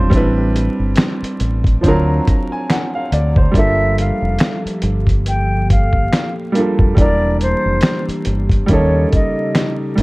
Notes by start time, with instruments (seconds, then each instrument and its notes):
Already playing: upright piano G3 C4 D4 F4 C5
0.10 fingered electric bass A1, upright piano G3 C4 D4, kick, closed hi-hat
0.15 upright piano E4 B4
0.56 closed hi-hat
0.79 fingered electric bass G1
0.96 finger snap, snare, closed hi-hat
1.22 muted fingered electric bass stroke, closed hi-hat
1.40 fingered electric bass A1, closed hi-hat
1.64 kick, closed hi-hat
1.81 fingered electric bass D2, upright piano F3 C4 D4, kick, closed hi-hat
1.86 upright piano F#3 F4 A#4
2.27 upright piano A#5, kick, closed hi-hat
2.52 upright piano G#5
2.70 upright piano F#5, finger snap, snare, closed hi-hat
2.95 upright piano F5
3.12 fingered electric bass D2, upright piano D5, closed hi-hat
3.36 upright piano C5, kick
3.51 fingered electric bass G1, analog synth pad F3 A#3 G4 A4, upright piano G3 A#3 D4, kick, closed hi-hat
3.57 upright piano F4 A4, flute E5
3.98 flute F5, closed hi-hat
4.22 fingered electric bass F1
4.39 finger snap, snare, closed hi-hat
4.65 muted fingered electric bass stroke, closed hi-hat
4.82 fingered electric bass G1, closed hi-hat
5.07 kick, closed hi-hat
5.26 flute G5, closed hi-hat
5.70 flute F5, kick, closed hi-hat
5.93 kick
6.13 finger snap, snare, closed hi-hat
6.52 upright piano G3 A#3 D4, closed hi-hat
6.58 upright piano F4 A4
6.79 fingered electric bass F1, kick
6.95 fingered electric bass E1, analog synth pad E3 D4 G4, upright piano G3 A#3 D4, kick, closed hi-hat
7.00 upright piano E4 A#4, flute D5
7.41 flute C5, closed hi-hat
7.65 fingered electric bass F1
7.81 finger snap, snare, closed hi-hat
8.08 muted fingered electric bass stroke, closed hi-hat
8.25 fingered electric bass G1, closed hi-hat
8.50 kick, closed hi-hat
8.66 fingered electric bass D#2, analog synth pad C#3 D#4 A4, upright piano G3 A#3 C#4, kick, closed hi-hat
8.71 upright piano D#4 A4, flute C#5
9.12 flute D#5, kick, closed hi-hat
9.55 finger snap, snare, closed hi-hat
9.95 fingered electric bass A1, upright piano G3 A#3 C#4, closed hi-hat